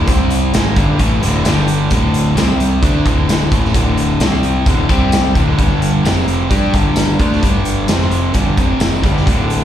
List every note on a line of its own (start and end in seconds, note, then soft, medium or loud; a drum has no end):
0.07 0.50 C2 medium
0.07 0.53 C3 medium
0.07 0.54 G3 medium
0.07 0.54 C4 loud
0.07 kick loud
0.07 closed hi-hat medium
0.30 closed hi-hat medium
0.53 0.75 G#1 medium
0.53 0.76 G#2 medium
0.53 0.76 D#3 medium
0.53 0.77 G#3 medium
0.53 snare loud
0.53 closed hi-hat medium
0.53 tambourine loud
0.76 0.98 G1 medium
0.76 0.99 G2 medium
0.76 0.99 D3 medium
0.76 1.00 G3 medium
0.76 kick loud
0.76 closed hi-hat medium
0.99 1.21 A1 medium
0.99 1.21 A2 medium
0.99 1.21 E3 medium
0.99 1.22 A3 loud
0.99 kick loud
0.99 closed hi-hat medium
1.21 1.43 D1 loud
1.21 1.44 D2 medium
1.21 1.45 A2 loud
1.21 1.45 D3 loud
1.21 closed hi-hat medium
1.44 1.87 G1 medium
1.44 1.91 G2 medium
1.44 1.91 D3 medium
1.44 1.91 G3 medium
1.44 snare loud
1.44 closed hi-hat medium
1.44 tambourine loud
1.68 closed hi-hat medium
1.90 2.34 D1 medium
1.90 2.35 D2 medium
1.90 2.37 A2 medium
1.90 2.36 D3 medium
1.90 kick loud
1.90 closed hi-hat medium
2.14 closed hi-hat medium
2.35 2.79 C2 medium
2.35 2.82 C3 medium
2.35 2.82 G3 medium
2.35 2.82 C4 medium
2.35 snare loud
2.35 closed hi-hat medium
2.35 tambourine loud
2.60 closed hi-hat medium
2.82 3.04 D2 medium
2.82 3.05 D3 medium
2.82 3.06 A3 medium
2.82 3.06 D4 medium
2.82 kick loud
2.82 closed hi-hat medium
3.05 3.49 D1 medium
3.05 3.51 D2 medium
3.05 3.51 A2 medium
3.05 3.52 D3 loud
3.05 kick loud
3.05 closed hi-hat medium
3.29 snare loud
3.29 closed hi-hat medium
3.29 tambourine loud
3.52 3.73 A1 medium
3.52 3.73 A2 medium
3.52 3.74 E3 medium
3.52 3.75 A3 loud
3.52 kick loud
3.52 closed hi-hat medium
3.65 snare soft
3.74 4.17 D1 loud
3.74 4.20 D2 medium
3.74 4.20 A2 medium
3.74 4.21 D3 loud
3.74 kick loud
3.74 closed hi-hat medium
3.98 closed hi-hat medium
4.20 4.64 C2 medium
4.20 4.66 C3 medium
4.20 4.66 G3 loud
4.20 4.67 C4 loud
4.20 snare loud
4.20 closed hi-hat medium
4.20 tambourine loud
4.33 snare soft
4.43 closed hi-hat medium
4.66 4.88 D1 medium
4.66 4.89 D2 medium
4.66 4.90 A2 medium
4.66 4.90 D3 loud
4.66 kick loud
4.66 closed hi-hat medium
4.89 5.33 C2 medium
4.89 5.35 C3 medium
4.89 5.35 G3 medium
4.89 5.35 C4 loud
4.89 kick loud
4.89 closed hi-hat medium
5.12 snare loud
5.12 closed hi-hat medium
5.12 tambourine loud
5.35 5.57 D1 medium
5.35 5.58 D2 medium
5.35 5.58 A2 medium
5.35 5.57 D3 medium
5.35 kick loud
5.35 closed hi-hat medium
5.58 6.01 G1 medium
5.58 6.03 G2 medium
5.58 6.04 D3 medium
5.58 6.05 G3 loud
5.58 kick loud
5.58 closed hi-hat medium
5.82 closed hi-hat medium
6.03 6.47 F1 loud
6.03 6.50 F2 medium
6.03 6.50 C3 medium
6.03 6.50 F3 medium
6.03 snare loud
6.03 closed hi-hat medium
6.03 tambourine loud
6.28 closed hi-hat medium
6.51 6.72 G2 medium
6.51 6.73 G3 medium
6.51 6.74 D4 medium
6.51 6.74 G4 loud
6.51 kick loud
6.51 closed hi-hat medium
6.73 7.17 G1 medium
6.73 7.19 G2 medium
6.73 7.18 D3 medium
6.73 7.19 G3 medium
6.73 kick loud
6.73 closed hi-hat medium
6.96 snare loud
6.96 closed hi-hat medium
6.96 tambourine loud
7.19 7.41 D2 loud
7.19 7.42 D3 medium
7.19 7.42 A3 medium
7.19 7.42 D4 medium
7.19 kick loud
7.19 closed hi-hat medium
7.32 snare soft
7.42 7.85 G1 medium
7.42 7.88 G2 medium
7.42 7.88 D3 medium
7.42 7.89 G3 loud
7.42 kick loud
7.42 closed hi-hat medium
7.65 closed hi-hat medium
7.88 8.31 F1 medium
7.88 8.33 F2 medium
7.88 8.33 C3 medium
7.88 8.34 F3 medium
7.88 snare loud
7.88 closed hi-hat medium
7.88 tambourine loud
8.01 snare soft
8.11 closed hi-hat medium
8.34 8.56 G1 medium
8.34 8.57 G2 medium
8.34 8.57 D3 medium
8.34 8.57 G3 medium
8.34 kick medium
8.34 closed hi-hat medium
8.57 9.00 F1 loud
8.57 9.01 F2 medium
8.57 9.02 C3 medium
8.57 9.03 F3 medium
8.57 kick loud
8.57 closed hi-hat medium
8.80 snare loud
8.80 closed hi-hat medium
8.80 tambourine loud
9.01 9.25 G1 medium
9.01 9.25 G2 medium
9.01 9.25 D3 medium
9.01 9.26 G3 loud
9.01 kick loud
9.01 closed hi-hat medium
9.17 snare soft
9.26 9.64 D1 medium
9.26 9.64 D2 medium
9.26 9.64 A2 medium
9.26 9.49 D3 medium
9.26 9.64 D3 loud
9.26 9.50 A3 medium
9.26 9.51 D4 loud
9.26 9.49 F#4 loud
9.26 9.47 A4 medium
9.26 kick loud
9.26 closed hi-hat medium
9.48 9.64 D4 soft
9.48 9.64 F#4 soft
9.48 9.64 A4 medium
9.48 closed hi-hat medium